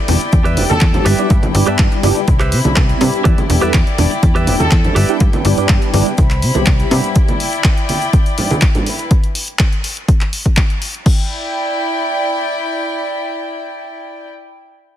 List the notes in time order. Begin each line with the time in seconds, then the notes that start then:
Already playing: E4 D5 G5
0.08 E1 G3 B3 D4 E4 G4, open hi-hat, high conga
0.20 closed hi-hat, shaker
0.32 E2, kick, closed hi-hat, shaker
0.44 G3 B3 D4 E4 G4 B4 D5 E5, closed hi-hat, shaker
0.57 E1, open hi-hat, low conga
0.70 E2 A4, closed hi-hat, high conga, shaker
0.80 E2, muted clean electric guitar stroke, kick, clap, closed hi-hat, shaker
0.93 G3 B3 D4 E4 G4, muted clean electric guitar stroke, closed hi-hat, low conga, shaker
1.05 G1 E4 G4 B4 D5 E5, open hi-hat
1.18 G3 B3 D4 E4 G4, closed hi-hat, shaker
1.30 G2, kick, closed hi-hat, shaker
1.43 G1, closed hi-hat, high conga, shaker
1.54 G1 G3 B3 D4 E4 G4, muted clean electric guitar stroke, open hi-hat
1.66 G2 G3 B3 D4 E4 G4 B4 D5 E5, closed hi-hat, shaker
1.78 G2, kick, clap, closed hi-hat, shaker
1.91 muted clean electric guitar stroke, closed hi-hat, shaker
2.03 G1 G3 B3 D4 E4 G4, open hi-hat, high conga
2.16 closed hi-hat, shaker
2.28 C2 C4 B5, kick, closed hi-hat, shaker
2.40 G4 B4 C5 E5, clap, closed hi-hat, shaker
2.52 C3, open hi-hat
2.65 C2 G3 B3 C4 E4 G4, closed hi-hat, high conga, shaker
2.75 C2 G3 B3 C4 E4 G4, muted clean electric guitar stroke, kick, clap, closed hi-hat, shaker
2.88 muted clean electric guitar stroke, closed hi-hat, shaker
3.00 C3 G3 B3 D4 E4 G4, open hi-hat, low conga
3.14 closed hi-hat, shaker
3.24 E2 G4 B4 D5 E5 G5, kick, closed hi-hat, shaker
3.38 closed hi-hat, high conga, shaker
3.49 E1 G3 B3 D4 E4 G4, muted clean electric guitar stroke, open hi-hat
3.61 E2 G3 B3 D4 E4 G4 A4 B4 D5 E5, closed hi-hat, shaker
3.73 E2, kick, clap, closed hi-hat, shaker
3.86 muted clean electric guitar stroke, closed hi-hat, shaker
3.98 E1 G3 B3 D4 E4 G4, open hi-hat, high conga
4.11 closed hi-hat, shaker
4.23 E2, kick, closed hi-hat, shaker
4.35 G3 B3 D4 E4 G4 B4 D5 E5, closed hi-hat, shaker
4.47 E1, open hi-hat, low conga
4.60 E2 A4, closed hi-hat, high conga, shaker
4.71 E2, muted clean electric guitar stroke, kick, clap, closed hi-hat, shaker
4.84 G3 B3 D4 E4 G4, muted clean electric guitar stroke, closed hi-hat, low conga, shaker
4.95 G1 G4 B4 D5 E5, open hi-hat
5.08 G3 B3 D4 E4 G4, closed hi-hat, shaker
5.20 G2, kick, closed hi-hat, shaker
5.33 G1, closed hi-hat, high conga, shaker
5.45 G1 G3 B3 D4 E4 G4, open hi-hat
5.58 G2 G3 B3 D4 E4 G4, closed hi-hat, shaker
5.69 G2, kick, clap, closed hi-hat, shaker
5.82 closed hi-hat, shaker
5.93 G1 G3 B3 D4 E4 G4, open hi-hat, high conga
6.06 closed hi-hat, shaker
6.18 C2 E4 C5 B5, kick, closed hi-hat, shaker
6.30 clap, closed hi-hat, shaker
6.42 C3, open hi-hat
6.55 C2 G3 B3 C4 E4 G4, closed hi-hat, high conga, shaker
6.66 C2 G3 B3 C4, kick, clap, closed hi-hat, shaker
6.79 closed hi-hat, shaker
6.91 C3 G3 B3 D4 E4 G4, open hi-hat, low conga
7.04 closed hi-hat, shaker
7.15 D5 G5, kick, closed hi-hat, shaker
7.28 closed hi-hat, high conga, shaker
7.40 open hi-hat
7.53 closed hi-hat, shaker
7.64 kick, clap, closed hi-hat, shaker
7.77 closed hi-hat, shaker
7.89 open hi-hat, high conga
8.02 closed hi-hat, shaker
8.13 kick, closed hi-hat, shaker
8.26 closed hi-hat, shaker
8.38 open hi-hat, low conga
8.51 closed hi-hat, high conga, shaker
8.62 kick, clap, closed hi-hat, shaker
8.75 closed hi-hat, low conga, shaker
8.86 E4 B4, open hi-hat
8.98 closed hi-hat, shaker
9.11 kick, closed hi-hat
9.24 closed hi-hat
9.35 open hi-hat
9.48 closed hi-hat
9.59 kick, clap, closed hi-hat
9.73 closed hi-hat
9.84 open hi-hat
9.97 closed hi-hat
10.08 kick, closed hi-hat
10.21 clap, closed hi-hat
10.33 open hi-hat
10.46 kick
10.57 kick, clap, closed hi-hat
10.70 closed hi-hat
10.82 open hi-hat
10.95 closed hi-hat
11.06 E4 D5 G5, kick, crash